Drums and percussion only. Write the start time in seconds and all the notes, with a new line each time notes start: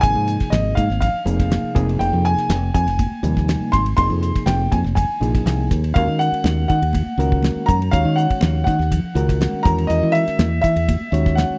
0.03 kick, hi-hat pedal, ride
0.28 hi-hat pedal, ride, muted conga
0.40 kick, snare, ride
0.52 snare, hi-hat pedal, ride, high conga, low conga
0.77 kick, hi-hat pedal, ride, muted conga, high conga
0.91 snare
1.01 kick, hi-hat pedal, ride, muted conga, low conga
1.27 hi-hat pedal, ride
1.40 kick, snare, ride
1.50 snare, hi-hat pedal, ride, high conga
1.76 kick, hi-hat pedal, ride
1.89 ride
2.00 hi-hat pedal, ride, muted conga
2.25 hi-hat pedal, ride, muted conga
2.38 snare, ride
2.50 snare, hi-hat pedal, ride, high conga
2.75 kick, hi-hat pedal, ride, muted conga
2.88 snare, ride
2.99 kick, hi-hat pedal, ride, muted conga, high conga
3.24 hi-hat pedal, ride
3.37 kick, snare
3.48 snare, hi-hat pedal, ride, high conga
3.73 kick, snare, hi-hat pedal, ride
3.86 ride
3.97 kick, hi-hat pedal, ride, muted conga
4.23 hi-hat pedal, ride, muted conga
4.36 kick, snare, ride
4.47 snare, hi-hat pedal, ride, high conga, low conga
4.72 kick, hi-hat pedal, ride, muted conga, high conga
4.86 snare
4.96 kick, hi-hat pedal, ride, muted conga, low conga
5.23 hi-hat pedal, ride
5.35 kick, snare, ride
5.46 snare, hi-hat pedal, ride, high conga
5.71 kick, snare, hi-hat pedal, ride
5.84 ride
5.95 kick, hi-hat pedal, ride, muted conga
6.20 hi-hat pedal, ride, muted conga
6.34 ride
6.44 snare, hi-hat pedal, ride, high conga
6.69 kick, hi-hat pedal, ride, muted conga
6.83 ride
6.93 kick, hi-hat pedal, ride, muted conga, high conga
7.20 hi-hat pedal, ride
7.32 kick
7.43 snare, hi-hat pedal, ride, high conga
7.69 kick, hi-hat pedal, ride
7.82 ride
7.93 kick, hi-hat pedal, ride, muted conga
8.17 hi-hat pedal, ride, muted conga
8.30 kick, ride
8.41 snare, hi-hat pedal, ride, high conga, low conga
8.67 kick, hi-hat pedal, ride, muted conga, high conga
8.81 snare
8.92 kick, hi-hat pedal, ride, muted conga, low conga
9.16 hi-hat pedal, ride
9.29 kick, snare, ride
9.41 snare, hi-hat pedal, ride, high conga
9.65 kick, snare, hi-hat pedal, ride
9.78 ride
9.90 hi-hat pedal, ride, muted conga
10.14 hi-hat pedal, ride, muted conga
10.27 snare, ride
10.39 snare, hi-hat pedal, ride, high conga
10.64 kick, hi-hat pedal, ride, muted conga
10.76 ride
10.88 kick, hi-hat pedal, ride, muted conga, high conga
11.14 hi-hat pedal, ride
11.26 kick, snare
11.37 snare, hi-hat pedal, ride, high conga